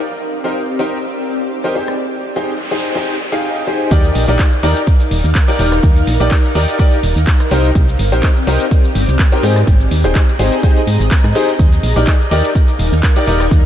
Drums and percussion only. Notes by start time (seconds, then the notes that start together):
1.88 cross-stick
3.91 kick, closed hi-hat, shaker
4.04 closed hi-hat, shaker
4.15 open hi-hat
4.29 shaker
4.39 kick, clap, closed hi-hat, shaker
4.53 shaker
4.63 open hi-hat
4.76 closed hi-hat, shaker
4.87 kick, closed hi-hat, shaker
5.00 closed hi-hat, shaker
5.11 open hi-hat
5.25 shaker
5.35 kick, clap, closed hi-hat, shaker
5.48 closed hi-hat, shaker
5.59 open hi-hat
5.72 cross-stick, shaker
5.83 kick, closed hi-hat, shaker
5.96 closed hi-hat, shaker
6.07 open hi-hat
6.21 shaker
6.31 kick, clap, closed hi-hat, shaker
6.45 shaker
6.55 open hi-hat
6.68 closed hi-hat, shaker
6.79 kick, closed hi-hat, shaker
6.92 closed hi-hat, shaker
7.03 open hi-hat
7.17 shaker
7.27 kick, clap, closed hi-hat, shaker
7.40 cross-stick, closed hi-hat, shaker
7.51 open hi-hat
7.65 shaker
7.75 kick, closed hi-hat, shaker
7.88 closed hi-hat, shaker
7.99 open hi-hat
8.13 shaker
8.23 kick, clap, closed hi-hat, shaker
8.37 shaker
8.47 open hi-hat
8.60 closed hi-hat, shaker
8.71 kick, closed hi-hat, shaker
8.84 closed hi-hat, shaker
8.95 open hi-hat
9.09 shaker
9.19 kick, clap, closed hi-hat, shaker
9.32 closed hi-hat, shaker
9.43 open hi-hat
9.56 cross-stick, shaker
9.67 kick, closed hi-hat, shaker
9.80 closed hi-hat, shaker
9.91 open hi-hat
10.04 closed hi-hat, shaker
10.15 kick, clap, closed hi-hat, shaker
10.29 shaker
10.39 open hi-hat
10.52 closed hi-hat, shaker
10.63 kick, closed hi-hat, shaker
10.76 closed hi-hat, shaker
10.87 open hi-hat
11.00 closed hi-hat, shaker
11.11 kick, clap, closed hi-hat, shaker
11.24 cross-stick, closed hi-hat, shaker
11.35 open hi-hat
11.49 shaker
11.59 kick, closed hi-hat, shaker
11.72 closed hi-hat, shaker
11.83 open hi-hat
11.97 shaker
12.07 kick, clap, closed hi-hat, shaker
12.21 shaker
12.31 open hi-hat
12.44 closed hi-hat, shaker
12.55 kick, closed hi-hat, shaker
12.68 closed hi-hat, shaker
12.79 open hi-hat
12.93 shaker
13.03 kick, clap, closed hi-hat, shaker
13.16 closed hi-hat, shaker
13.27 open hi-hat
13.40 cross-stick, shaker
13.51 kick, closed hi-hat, shaker